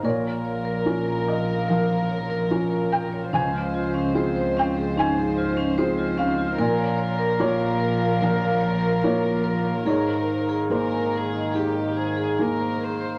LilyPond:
<<
  \new Staff \with { instrumentName = "Vibraphone" } { \time 4/4 \key bes \minor \tempo 4 = 73 bes'16 des''16 des''16 bes'16 bes''16 bes''16 bes'16 f''16 bes'16 f''16 des''16 bes'16 bes''16 des''16 bes'16 des''16 | des'16 f'16 f'16 des'16 c''16 c''16 des'16 aes'16 des'16 aes'16 f'16 des'16 c''16 f'16 des'16 f'16 | bes'16 des''16 des''16 bes'16 bes''16 bes''16 bes'16 f''16 bes'16 f''16 des''16 bes'16 bes''16 des''16 bes'16 des''16 | aes'16 c''16 c''16 aes'16 aes''16 aes''16 aes'16 ees''16 aes'16 ees''16 c''16 aes'16 aes''16 c''16 aes'16 c''16 | }
  \new Staff \with { instrumentName = "Violin section" } { \time 4/4 \key bes \minor bes'1 | c''1 | bes'1 | bes'4 bes'8 aes'8 g'8 aes'8 bes'8 c''8 | }
  \new Staff \with { instrumentName = "Felt piano" } { \time 4/4 \key bes \minor << { des''4. ees''8 f''4. g''8 | aes''4. g''8 aes''4. f''8 | r4 des''4 f''4 des''4 | des''4 c''2~ c''8 r8 | } \\ { bes,4 <des' f' bes'>4 f4 <des' f' bes'>4 | des,4 <c' f' aes'>4 aes,4 <c' f' aes'>4 | bes,4 <bes f' bes'>4 f4 <bes f' bes'>4 | aes,4 <bes aes' bes'>4 ees4 <bes aes' bes'>4 | } >> }
  \new Staff \with { instrumentName = "Harmonium" } { \time 4/4 \key bes \minor <bes f' bes'>1 | <aes f' c''>1 | <bes f' bes'>1 | <bes ees' bes'>1 | }
  \new Staff \with { instrumentName = "Cello" } { \clef bass \time 4/4 \key bes \minor f1 | f1 | f1 | ees2.~ ees8. r16 | }
  \new Staff \with { instrumentName = "Double bass" } { \clef bass \time 4/4 \key bes \minor bes,,1 | des,1 | bes,,1 | aes,,1 | }
>>